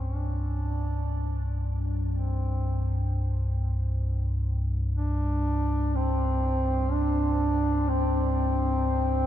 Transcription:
0, 0, Header, 1, 3, 480
1, 0, Start_track
1, 0, Tempo, 500000
1, 8895, End_track
2, 0, Start_track
2, 0, Title_t, "Duduk"
2, 0, Program_c, 0, 69
2, 0, Note_on_c, 0, 60, 79
2, 137, Note_on_c, 0, 62, 96
2, 151, Note_off_c, 0, 60, 0
2, 1747, Note_off_c, 0, 62, 0
2, 2010, Note_on_c, 0, 60, 76
2, 2887, Note_off_c, 0, 60, 0
2, 4767, Note_on_c, 0, 62, 97
2, 5711, Note_on_c, 0, 60, 98
2, 5725, Note_off_c, 0, 62, 0
2, 6637, Note_on_c, 0, 62, 93
2, 6651, Note_off_c, 0, 60, 0
2, 7565, Note_on_c, 0, 60, 89
2, 7579, Note_off_c, 0, 62, 0
2, 8895, Note_off_c, 0, 60, 0
2, 8895, End_track
3, 0, Start_track
3, 0, Title_t, "Synth drone"
3, 0, Program_c, 1, 95
3, 0, Note_on_c, 1, 36, 65
3, 0, Note_on_c, 1, 43, 62
3, 8895, Note_off_c, 1, 36, 0
3, 8895, Note_off_c, 1, 43, 0
3, 8895, End_track
0, 0, End_of_file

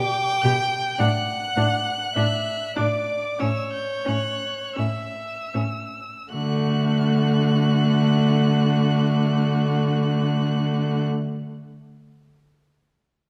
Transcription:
0, 0, Header, 1, 5, 480
1, 0, Start_track
1, 0, Key_signature, 2, "major"
1, 0, Tempo, 1102941
1, 430, Time_signature, 4, 2, 24, 8
1, 430, Tempo, 1174168
1, 910, Tempo, 1244813
1, 1390, Tempo, 1376147
1, 1870, Tempo, 1530612
1, 2830, Tempo, 1485149
1, 4592, End_track
2, 0, Start_track
2, 0, Title_t, "Violin"
2, 0, Program_c, 0, 40
2, 0, Note_on_c, 0, 86, 99
2, 182, Note_on_c, 0, 91, 80
2, 189, Note_off_c, 0, 86, 0
2, 423, Note_off_c, 0, 91, 0
2, 425, Note_on_c, 0, 90, 84
2, 1142, Note_on_c, 0, 86, 68
2, 1148, Note_off_c, 0, 90, 0
2, 1388, Note_on_c, 0, 88, 72
2, 1393, Note_off_c, 0, 86, 0
2, 1501, Note_off_c, 0, 88, 0
2, 1503, Note_on_c, 0, 91, 65
2, 1625, Note_on_c, 0, 90, 76
2, 1630, Note_off_c, 0, 91, 0
2, 1864, Note_off_c, 0, 90, 0
2, 1866, Note_on_c, 0, 88, 61
2, 2344, Note_off_c, 0, 88, 0
2, 2355, Note_on_c, 0, 90, 68
2, 3865, Note_off_c, 0, 90, 0
2, 4592, End_track
3, 0, Start_track
3, 0, Title_t, "Violin"
3, 0, Program_c, 1, 40
3, 0, Note_on_c, 1, 79, 82
3, 433, Note_on_c, 1, 78, 69
3, 439, Note_off_c, 1, 79, 0
3, 905, Note_off_c, 1, 78, 0
3, 908, Note_on_c, 1, 76, 65
3, 1140, Note_off_c, 1, 76, 0
3, 1146, Note_on_c, 1, 74, 60
3, 1387, Note_on_c, 1, 73, 53
3, 1393, Note_off_c, 1, 74, 0
3, 1871, Note_on_c, 1, 76, 44
3, 1875, Note_off_c, 1, 73, 0
3, 2112, Note_off_c, 1, 76, 0
3, 2356, Note_on_c, 1, 66, 43
3, 3866, Note_off_c, 1, 66, 0
3, 4592, End_track
4, 0, Start_track
4, 0, Title_t, "Viola"
4, 0, Program_c, 2, 41
4, 188, Note_on_c, 2, 67, 51
4, 223, Note_off_c, 2, 67, 0
4, 429, Note_on_c, 2, 62, 54
4, 462, Note_off_c, 2, 62, 0
4, 668, Note_on_c, 2, 62, 51
4, 700, Note_off_c, 2, 62, 0
4, 908, Note_on_c, 2, 62, 49
4, 939, Note_off_c, 2, 62, 0
4, 1141, Note_on_c, 2, 62, 54
4, 1172, Note_off_c, 2, 62, 0
4, 1383, Note_on_c, 2, 61, 50
4, 1411, Note_off_c, 2, 61, 0
4, 1615, Note_on_c, 2, 61, 47
4, 1643, Note_off_c, 2, 61, 0
4, 1860, Note_on_c, 2, 61, 36
4, 1886, Note_off_c, 2, 61, 0
4, 2108, Note_on_c, 2, 61, 36
4, 2133, Note_off_c, 2, 61, 0
4, 2353, Note_on_c, 2, 57, 51
4, 3863, Note_off_c, 2, 57, 0
4, 4592, End_track
5, 0, Start_track
5, 0, Title_t, "Cello"
5, 0, Program_c, 3, 42
5, 191, Note_on_c, 3, 47, 68
5, 226, Note_off_c, 3, 47, 0
5, 432, Note_on_c, 3, 45, 66
5, 465, Note_off_c, 3, 45, 0
5, 666, Note_on_c, 3, 45, 60
5, 699, Note_off_c, 3, 45, 0
5, 912, Note_on_c, 3, 45, 62
5, 942, Note_off_c, 3, 45, 0
5, 1148, Note_on_c, 3, 45, 50
5, 1179, Note_off_c, 3, 45, 0
5, 1393, Note_on_c, 3, 45, 54
5, 1421, Note_off_c, 3, 45, 0
5, 1623, Note_on_c, 3, 45, 45
5, 1651, Note_off_c, 3, 45, 0
5, 1870, Note_on_c, 3, 45, 47
5, 1895, Note_off_c, 3, 45, 0
5, 2110, Note_on_c, 3, 45, 45
5, 2135, Note_off_c, 3, 45, 0
5, 2355, Note_on_c, 3, 50, 57
5, 3865, Note_off_c, 3, 50, 0
5, 4592, End_track
0, 0, End_of_file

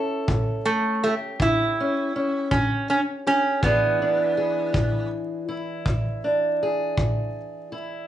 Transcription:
0, 0, Header, 1, 4, 480
1, 0, Start_track
1, 0, Tempo, 744417
1, 2341, Time_signature, 12, 3, 24, 8
1, 5205, End_track
2, 0, Start_track
2, 0, Title_t, "Steel-string acoustic guitar"
2, 0, Program_c, 0, 25
2, 0, Note_on_c, 0, 61, 62
2, 0, Note_on_c, 0, 64, 62
2, 0, Note_on_c, 0, 69, 65
2, 188, Note_on_c, 0, 45, 76
2, 616, Note_off_c, 0, 45, 0
2, 675, Note_off_c, 0, 64, 0
2, 677, Note_on_c, 0, 67, 59
2, 909, Note_on_c, 0, 45, 77
2, 1150, Note_off_c, 0, 61, 0
2, 1163, Note_on_c, 0, 61, 57
2, 1337, Note_off_c, 0, 45, 0
2, 1383, Note_off_c, 0, 61, 0
2, 1391, Note_on_c, 0, 61, 66
2, 1624, Note_on_c, 0, 45, 72
2, 2054, Note_off_c, 0, 45, 0
2, 2098, Note_off_c, 0, 67, 0
2, 2106, Note_on_c, 0, 67, 61
2, 2315, Note_off_c, 0, 67, 0
2, 2317, Note_off_c, 0, 61, 0
2, 2318, Note_off_c, 0, 69, 0
2, 2344, Note_on_c, 0, 40, 74
2, 2347, Note_on_c, 0, 52, 61
2, 2350, Note_on_c, 0, 62, 66
2, 2354, Note_on_c, 0, 64, 64
2, 2362, Note_on_c, 0, 68, 69
2, 2584, Note_off_c, 0, 62, 0
2, 2591, Note_on_c, 0, 62, 63
2, 2775, Note_off_c, 0, 40, 0
2, 2812, Note_off_c, 0, 68, 0
2, 2819, Note_on_c, 0, 68, 64
2, 3047, Note_on_c, 0, 40, 71
2, 3486, Note_off_c, 0, 40, 0
2, 3534, Note_off_c, 0, 64, 0
2, 3537, Note_on_c, 0, 64, 59
2, 3779, Note_on_c, 0, 40, 76
2, 4017, Note_off_c, 0, 62, 0
2, 4025, Note_on_c, 0, 62, 54
2, 4212, Note_off_c, 0, 40, 0
2, 4260, Note_off_c, 0, 68, 0
2, 4273, Note_on_c, 0, 68, 66
2, 4510, Note_on_c, 0, 40, 71
2, 4937, Note_off_c, 0, 40, 0
2, 4975, Note_off_c, 0, 64, 0
2, 4978, Note_on_c, 0, 64, 57
2, 5193, Note_off_c, 0, 62, 0
2, 5197, Note_off_c, 0, 68, 0
2, 5205, Note_off_c, 0, 52, 0
2, 5205, Note_off_c, 0, 64, 0
2, 5205, End_track
3, 0, Start_track
3, 0, Title_t, "Resonator guitar played with a steel bar"
3, 0, Program_c, 1, 25
3, 422, Note_on_c, 1, 57, 90
3, 660, Note_off_c, 1, 57, 0
3, 668, Note_on_c, 1, 57, 82
3, 732, Note_off_c, 1, 57, 0
3, 915, Note_on_c, 1, 64, 98
3, 1617, Note_off_c, 1, 64, 0
3, 1619, Note_on_c, 1, 61, 91
3, 1861, Note_off_c, 1, 61, 0
3, 1869, Note_on_c, 1, 61, 88
3, 1933, Note_off_c, 1, 61, 0
3, 2110, Note_on_c, 1, 61, 95
3, 2342, Note_off_c, 1, 61, 0
3, 2344, Note_on_c, 1, 59, 84
3, 3277, Note_off_c, 1, 59, 0
3, 5205, End_track
4, 0, Start_track
4, 0, Title_t, "Drums"
4, 181, Note_on_c, 9, 36, 67
4, 245, Note_off_c, 9, 36, 0
4, 901, Note_on_c, 9, 36, 67
4, 966, Note_off_c, 9, 36, 0
4, 1620, Note_on_c, 9, 36, 64
4, 1685, Note_off_c, 9, 36, 0
4, 2339, Note_on_c, 9, 36, 68
4, 2403, Note_off_c, 9, 36, 0
4, 3058, Note_on_c, 9, 36, 70
4, 3122, Note_off_c, 9, 36, 0
4, 3777, Note_on_c, 9, 36, 66
4, 3841, Note_off_c, 9, 36, 0
4, 4497, Note_on_c, 9, 36, 59
4, 4562, Note_off_c, 9, 36, 0
4, 5205, End_track
0, 0, End_of_file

